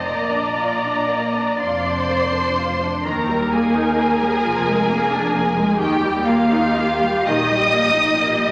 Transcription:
<<
  \new Staff \with { instrumentName = "Violin section" } { \time 6/8 \key bes \major \tempo 4. = 43 bes''4. c'''4. | \key ees \major bes''8 aes''2~ aes''8 | g''8 f''4 ees'''4. | }
  \new Staff \with { instrumentName = "Violin section" } { \time 6/8 \key bes \major << { ees''4. <c'' d''>4. | \key ees \major bes'8 aes'2~ aes'8 | g'8 f'4 ees''4. | } \\ { bes16 d'16 f'16 d'16 bes16 d'16 f'16 d'16 bes16 d'16 f'16 d'16 | r2. | r2. | } >> }
  \new Staff \with { instrumentName = "Viola section" } { \time 6/8 \key bes \major << { d''2~ d''16 r8. | \key ees \major bes'2. | g'2. | } \\ { r2. | ees16 g16 bes16 ees'16 bes16 g16 f16 aes16 bes16 d'16 bes16 aes16 | ees16 g16 bes16 ees'16 bes16 g16 ees16 g16 bes16 ees'16 bes16 g16 | } >> }
  \new Staff \with { instrumentName = "Cello section" } { \clef bass \time 6/8 \key bes \major bes,4. f,4. | \key ees \major ees,4. f,4. | ees,4. bes,4. | }
  \new Staff \with { instrumentName = "Double bass section" } { \clef bass \time 6/8 \key bes \major bes,,4. f,,4. | \key ees \major ees,4. f,,4. | ees,4. bes,,4. | }
>>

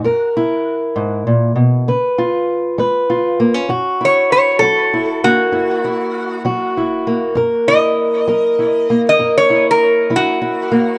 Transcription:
<<
  \new Staff \with { instrumentName = "Resonator guitar played with a steel bar" } { \time 12/8 \key fis \mixolydian \tempo 4. = 66 r1. | r8 cis''8 cis''8 a'4 fis'2 r4. | r8 dis''2~ dis''16 dis''8 cis''8 ais'8. fis'4. | }
  \new Staff \with { instrumentName = "Steel-string acoustic guitar" } { \time 12/8 \key fis \mixolydian << { ais'8 e'2~ e'8 b'8 eis'4 b'8 eis'8 ais16 cis'16 | fis'8 e'4 fis'8 e'8 ais8 e'8 e'4 fis'8 e'8 ais8 | ais'8 e'4 ais'8 e'8 ais8 ais'8 e'4 e'8 e'8 ais8 | } \\ { fis,4 r8 gis,8 ais,8 b,8 cis4 r8 gis4 r8 | fis,4 r8 fis4 r8 fis,4 r8 fis4 r8 | fis,4 r8 fis4 r8 fis,4 r8 fis4 r8 | } >> }
>>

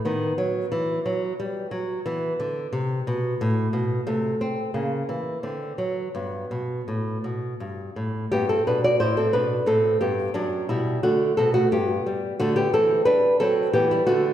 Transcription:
\new Staff \with { instrumentName = "Nylon-string guitar" } { \time 3/4 \key g \major \tempo 4 = 89 << { b2. | b2. | a4 ais4 c'4 | b2. |
<b g'>16 <c' a'>16 <d' b'>16 <fis' d''>16 <e' c''>16 <c' a'>16 <d' b'>8 <c' a'>8 <b g'>8 | <fis d'>8 <g e'>8 <a fis'>8 <c' a'>16 <a fis'>16 <b g'>4 | <a fis'>16 <b g'>16 <c' a'>8 <d' b'>8 <c' a'>8 <b g'>16 <g e'>16 <a fis'>8 | } \\ { dis8 fis8 e8 fis8 g8 fis8 | e8 d8 c8 b,8 a,8 b,8 | c8 c'8 cis8 e8 d8 fis8 | g,8 b,8 a,8 b,8 g,8 a,8 |
g,8 b,8 a,8 b,8 a,8 g,8 | fis,8 b,8 d8 b,8 g,8 g8 | d8 e8 g8 fis8 e8 d8 | } >> }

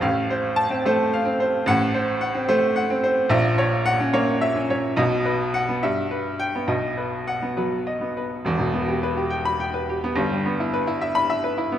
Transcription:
<<
  \new Staff \with { instrumentName = "Grand piano" } { \time 6/8 \key f \major \tempo 4. = 71 << { r4 a''8. r4 r16 | \key e \minor fis''8. r2 r16 | r4 fis''8. r4 r16 | r4 fis''8 r4 g''8 |
r4 fis''8. r4 r16 | r4. r16 b''8 r8. | r4. r16 b''8 r8. | } \\ { f''8 c''4 c''8 f''8 c''8 | r8 c''8 fis''8 c''8 fis''8 c''8 | e''8 cis''4 cis''8 e''8 cis''8 | dis''8 b'4 e''8 b'4 |
dis''8 b'4 b'8 dis''8 b'8 | r2. | r2. | } >> }
  \new Staff \with { instrumentName = "Grand piano" } { \time 6/8 \key f \major <a,, a,>4~ <a,, a,>16 c'16 a8 r16 c'8 r16 | \key e \minor <a,, a,>4~ <a,, a,>16 c'16 a8 r16 c'8 r16 | <ais,, ais,>4~ <ais,, ais,>16 cis'16 ais8 r16 cis'8 r16 | <b,, b,>4~ <b,, b,>16 b16 g,4~ g,16 b16 |
<b,, b,>4~ <b,, b,>16 b16 fis8 r16 b8 r16 | <e,, e,>16 b,16 b16 g'16 b'16 g'16 g''8 g''16 b'16 g'16 b16 | <g,, g,>16 g16 b16 e'16 b'16 e'16 e''8 e''16 b'16 e'16 b16 | }
>>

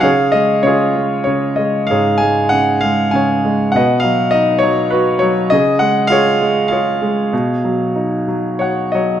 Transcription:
<<
  \new Staff \with { instrumentName = "Grand piano" } { \time 3/4 \key cis \mixolydian \tempo 4 = 98 << { eis''8 dis''8 cis''4 cis''8 dis''8 | eis''8 gis''8 fis''8 eis''8 gis''4 | fis''8 eis''8 dis''8 cis''8 b'8 cis''8 | dis''8 fis''8 eis''4 eis''4~ |
eis''2 <cis'' fis''>8 <cis'' dis''>8 | } \\ { <gis' cis''>4 <eis' gis'>4. r8 | <gis' cis''>4. r8 <cis'' eis''>4 | <b' dis''>4. r4. | gis'4 <gis' cis''>4 <gis' cis''>4~ |
<gis' cis''>2 r4 | } >> }
  \new Staff \with { instrumentName = "Grand piano" } { \clef bass \time 3/4 \key cis \mixolydian cis8 gis8 cis8 gis8 cis8 gis8 | gis,8 gis8 cis8 gis8 cis8 gis8 | b,8 fis8 dis'8 fis8 fis'8 fis8 | cis8 gis8 eis'8 gis8 eis'8 gis8 |
b,8 fis8 dis'8 fis8 fis'8 fis8 | }
>>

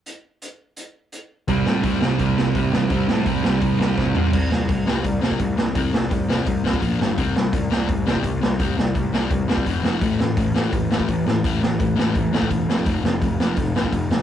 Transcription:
<<
  \new Staff \with { instrumentName = "Overdriven electric guitar" } { \clef bass \time 4/4 \key c \major \tempo 4 = 169 r1 | <c g c'>8 <c g c'>8 <c g c'>8 <c g c'>8 <c g c'>8 <c g c'>8 <c g c'>8 <c g c'>8 | <c g c'>8 <c g c'>8 <c g c'>8 <c g c'>8 <c g c'>8 <c g c'>8 <c g c'>8 <c g c'>8 | r1 |
r1 | r1 | r1 | r1 |
r1 | r1 | }
  \new Staff \with { instrumentName = "Distorted electric guitar" } { \clef bass \time 4/4 \key c \major r1 | <c g c'>8 <c g c'>8 <c g c'>8 <c g c'>8 <c g c'>8 <c g c'>8 <c g c'>8 <c g c'>8 | <c g c'>8 <c g c'>8 <c g c'>8 <c g c'>8 <c g c'>8 <c g c'>8 <c g c'>8 <c g c'>8 | <c g c'>8 <c g>8 <c g>8 <c g c'>8 <c g>8 <c g c'>8 <c g>8 <c g>8 |
<c g c'>8 <c g>8 <c g>8 <c g c'>8 <c g>8 <c g c'>8 <bes, f bes>8 <g, d g>8 | <c g c'>8 <c g>8 <c g>8 <c g c'>8 <c g>8 <c g c'>8 <c g>8 <c g>8 | <c g c'>8 <c g>8 <c g>8 <c g c'>8 <c g>8 <c g c'>8 <f, c f>8 <f, c f>8 | <a, e a>8 <a, e>8 <a, e>8 <a, e a>8 <a, e>8 <a, e a>8 <a, e>8 <a, e>8 |
<a, e a>8 <a, e>8 <a, e>8 <a, e a>8 <a, e>8 <a, e a>8 <a, e>8 <f, c f>8 | <f, c f>8 <f, c>8 <f, c>8 <f, c f>8 <f, c>8 <f, c f>8 <f, c>8 <f, c>8 | }
  \new Staff \with { instrumentName = "Picked electric bass" } { \clef bass \time 4/4 \key c \major r1 | c,8 a,8 c,8 c,8 c,4 c,8 a,,8 | c,8 a,8 c,8 c,8 c,4 c,8 a,,8 | c,8 c,8 c,8 c,8 c,8 c,8 c,8 c,8 |
c,8 c,8 c,8 c,8 c,8 c,8 bes,,8 g,,8 | c,8 c,8 c,8 c,8 c,8 c,8 c,8 c,8 | c,8 c,8 c,8 c,8 c,8 c,8 f,,8 f,,8 | a,,8 a,,8 a,,8 a,,8 a,,8 a,,8 a,,8 a,,8 |
a,,8 a,,8 a,,8 a,,8 a,,8 a,,8 e,,8 f,,8 | f,,8 f,,8 f,,8 f,,8 f,,8 f,,8 f,,8 f,,8 | }
  \new DrumStaff \with { instrumentName = "Drums" } \drummode { \time 4/4 hh4 hh4 hh4 hh4 | <hho bd>8 sn8 <hho bd>8 sn8 <hho bd>8 sn8 <hho bd>8 sn8 | <hho bd>8 sn8 <hho bd>8 sn8 <hho bd>8 sn8 <bd sn>8 tomfh8 | <cymc bd>8 sn8 <hho bd>8 sn8 <hho bd>8 sn16 bd16 <hho bd>8 sn8 |
<hho bd>8 sn8 <hho bd>8 sn8 <hho bd>8 sn16 bd16 <hho bd>8 sn8 | <hho bd>8 sn8 <hho bd>8 sn8 <hho bd>8 sn16 bd16 <hho bd>8 sn8 | <hho bd>8 sn8 <hho bd>8 sn8 <hho bd>8 sn16 bd16 <hho bd>8 sn8 | <hho bd>8 sn8 <hho bd>8 sn8 <hho bd>8 sn16 bd16 <hho bd>8 sn8 |
<hho bd>8 sn8 <hho bd>8 sn8 <hho bd>8 sn16 bd16 <hho bd>8 sn8 | <hho bd>8 sn8 <hho bd>8 sn8 <hho bd>8 sn16 bd16 <hho bd>8 sn8 | }
>>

